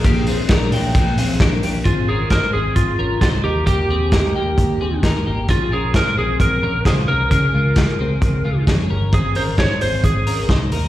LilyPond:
<<
  \new Staff \with { instrumentName = "Lead electric guitar" } { \time 4/4 \key aes \major \tempo 4 = 132 aes'2. r4 | f'8 aes'8 bes'8 aes'8 f'4 f'8 g'8 | g'2. r4 | f'8 aes'8 bes'8 aes'8 bes'4 aes'8 bes'8 |
bes'2. r4 | aes'8 c''8 des''8 c''8 aes'4 r4 | }
  \new Staff \with { instrumentName = "Clean electric guitar" } { \time 4/4 \key aes \major <bes g'>8 <c' aes'>8 <d' bes'>8 <bes g''>4 <c' aes'>8 <d' bes'>8 <bes g'>8 | <c' aes'>8 <des' bes'>8 <ees' c''>8 <c' aes'>4 <des' bes'>8 <ees' c''>8 <ees' bes'>8 | <bes g'>8 <c' aes'>8 <ees' bes'>8 <bes g'>4 <c' aes'>8 <ees' bes'>8 <bes g'>8 | <des' aes'>8 <des' bes'>8 <f' c''>8 <c' aes'>4 <des' bes'>8 <f' c''>8 <des' bes'>8 |
<des' aes'>8 <aes f'>8 <aes f'>8 <c' aes'>4 <aes f'>8 <des' aes'>8 <des' bes'>8 | <c' aes'>8 <des' bes'>8 <ees' c''>8 <c' aes'>4 <des' bes'>8 <ees' c''>8 <ees' bes'>8 | }
  \new Staff \with { instrumentName = "String machine" } { \clef bass \time 4/4 \key aes \major <bes, aes d'>1 | r1 | r1 | r1 |
r1 | r1 | }
  \new Staff \with { instrumentName = "Picked electric bass" } { \clef bass \time 4/4 \key aes \major bes,,4 bes,,8 bes,,8 bes,,8 bes,,8 bes,,8 bes,,8 | aes,,8 aes,,8. r16 aes,,8 aes,,8 aes,,8 c,8 ees,8~ | ees,8 ees,8. r16 ees,8 ees,8 ees,8 ees,8 aes,,8 | bes,,8 bes,,8. r16 bes,,8 bes,,8 bes,,8 des,8 c,8 |
des,8 des,8. r16 des,8 des,8 des,8 f,8 g,,8 | aes,,8 aes,,8. r16 aes,,8 aes,,8 aes,,8 c,8 ees,8 | }
  \new DrumStaff \with { instrumentName = "Drums" } \drummode { \time 4/4 <hhp bd cymr>8 hho8 <hhp bd cymr sn>8 hho8 <hhp bd cymr>8 hho8 <hhp bd cymr sn>8 hho8 | <hh bd>4 <hh bd sn>4 <hh bd>4 <hh bd sn>4 | <hh bd>4 <hh bd sn>4 <hh bd>4 <hh bd sn>4 | <hh bd>4 <hh bd sn>4 <hh bd>4 <hh bd sn>4 |
<hh bd>4 <hh bd sn>4 <hh bd>4 <hh bd sn>4 | <hh bd>8 hho8 <hh bd sn>8 hho8 <hh bd>8 hho8 <hh bd sn>8 hho8 | }
>>